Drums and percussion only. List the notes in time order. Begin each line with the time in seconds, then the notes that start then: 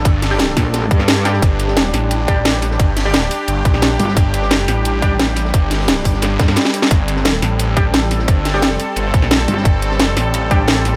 0.05 kick, closed hi-hat, ride
0.22 snare, closed hi-hat, open hi-hat
0.31 snare
0.38 snare, closed hi-hat, ride
0.48 snare
0.57 kick, snare, open hi-hat, ride
0.73 snare, closed hi-hat, ride
0.91 kick, closed hi-hat, ride
0.99 snare
1.08 snare, closed hi-hat, ride
1.25 snare, open hi-hat, ride
1.33 snare
1.42 kick, closed hi-hat, ride
1.60 closed hi-hat, ride
1.68 snare
1.77 snare, closed hi-hat, ride
1.85 ride
1.93 snare, open hi-hat, ride
2.11 closed hi-hat, ride
2.28 kick, closed hi-hat, ride
2.45 snare, closed hi-hat, ride
2.62 snare, open hi-hat, ride
2.71 snare
2.79 kick, closed hi-hat, ride
2.96 snare, closed hi-hat, open hi-hat
3.05 snare
3.14 snare, closed hi-hat, ride
3.23 snare
3.31 open hi-hat, ride
3.48 closed hi-hat, ride
3.65 kick, closed hi-hat, ride
3.74 snare
3.82 snare, closed hi-hat, ride
3.99 open hi-hat, ride
4.08 snare
4.17 kick, closed hi-hat, ride
4.34 closed hi-hat, ride
4.42 snare
4.50 snare, closed hi-hat, ride
4.59 ride
4.68 snare, open hi-hat, ride
4.85 closed hi-hat, ride
5.02 kick, closed hi-hat, ride
5.20 snare, closed hi-hat, ride
5.36 snare, open hi-hat, ride
5.45 snare
5.54 kick, closed hi-hat, ride
5.71 snare, closed hi-hat, open hi-hat
5.79 snare
5.88 snare, closed hi-hat, ride
5.97 snare
6.04 kick, open hi-hat, ride
6.14 snare
6.22 snare, closed hi-hat, ride
6.30 ride
6.39 kick, snare, closed hi-hat, ride
6.48 snare, ride
6.56 snare, closed hi-hat, ride
6.65 snare
6.74 snare, open hi-hat, ride
6.82 snare
6.91 kick, closed hi-hat, ride
7.08 closed hi-hat, ride
7.16 snare
7.25 snare, closed hi-hat, ride
7.34 ride
7.42 snare, open hi-hat, ride
7.59 closed hi-hat, ride
7.77 kick, closed hi-hat, ride
7.94 snare, closed hi-hat, ride
8.10 snare, open hi-hat, ride
8.19 snare
8.28 kick, closed hi-hat, ride
8.45 snare, closed hi-hat, open hi-hat
8.54 snare
8.62 snare, closed hi-hat, ride
8.71 snare
8.80 open hi-hat, ride
8.96 closed hi-hat, ride
9.14 kick, closed hi-hat, ride
9.22 snare
9.31 snare, closed hi-hat, ride
9.48 open hi-hat, ride
9.57 snare
9.65 kick, closed hi-hat, ride
9.82 closed hi-hat, ride
9.91 snare
10.00 snare, closed hi-hat, ride
10.08 ride
10.17 snare, open hi-hat, ride
10.34 closed hi-hat, ride
10.51 kick, closed hi-hat, ride
10.67 snare, closed hi-hat, ride
10.85 snare, open hi-hat, ride